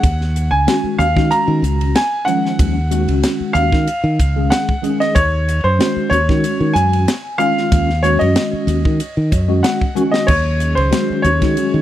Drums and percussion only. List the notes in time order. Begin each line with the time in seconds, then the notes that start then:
0.03 kick, hi-hat pedal, ride
0.21 snare
0.36 hi-hat pedal, ride
0.68 snare, hi-hat pedal, ride
1.00 hi-hat pedal, ride
1.17 kick, snare
1.31 hi-hat pedal, ride
1.64 hi-hat pedal, ride
1.81 ride
1.95 snare, hi-hat pedal, ride
2.28 hi-hat pedal, ride
2.45 snare
2.59 kick, hi-hat pedal, ride
2.91 hi-hat pedal, ride
3.08 ride
3.23 snare, hi-hat pedal, ride
3.55 hi-hat pedal, ride
3.72 kick, snare
3.87 hi-hat pedal, ride
4.19 kick, hi-hat pedal, ride
4.52 snare, hi-hat pedal, ride
4.69 kick
4.84 hi-hat pedal, ride
5.02 snare, ride
5.16 kick, hi-hat pedal, ride
5.49 hi-hat pedal, ride
5.80 snare, hi-hat pedal, ride
6.12 hi-hat pedal, ride
6.29 kick, snare
6.44 hi-hat pedal, ride
6.76 hi-hat pedal, ride
6.93 ride
7.08 snare, hi-hat pedal, ride
7.40 hi-hat pedal, ride
7.57 snare
7.72 kick, hi-hat pedal, ride
7.90 snare
8.04 hi-hat pedal, ride
8.21 ride
8.36 snare, hi-hat pedal, ride
8.68 hi-hat pedal, ride
8.85 kick
9.00 hi-hat pedal, ride
9.32 kick, hi-hat pedal, ride
9.64 snare, hi-hat pedal, ride
9.81 kick
9.96 hi-hat pedal, high tom
10.14 snare
10.28 kick, crash
10.60 hi-hat pedal, ride
10.77 ride
10.92 snare, hi-hat pedal, ride
11.24 hi-hat pedal, ride
11.42 kick, snare, ride
11.57 hi-hat pedal, ride